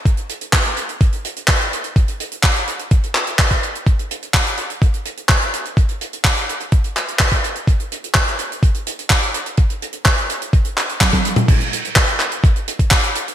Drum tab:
CC |----------------|----------------|----------------|----------------|
HH |xxxx-xxxxxxxxxxx|xxxxxxxxxxxxxxxx|xxxxxxxxxxxxxxxx|xxxxxxxxxxxxxxxx|
CP |----x-------x---|----x-----x-x---|----x-------x---|----x-----x-x---|
T1 |----------------|----------------|----------------|----------------|
T2 |----------------|----------------|----------------|----------------|
BD |o---o---o---o---|o---o---o---oo--|o---o---o---o---|o---o---o---oo--|

CC |----------------|----------------|x---------------|
HH |xxxxxxxxxxxxxxxx|xxxxxxxxxxxxxxxx|xxxx-xxxxxxxxxxx|
CP |----x-------x---|----x-----x-x---|----x-x-----x---|
T1 |----------------|------------oo--|----------------|
T2 |----------------|---------------o|----------------|
BD |o---o---o---o---|o---o---o---oo--|o---o---o--oo---|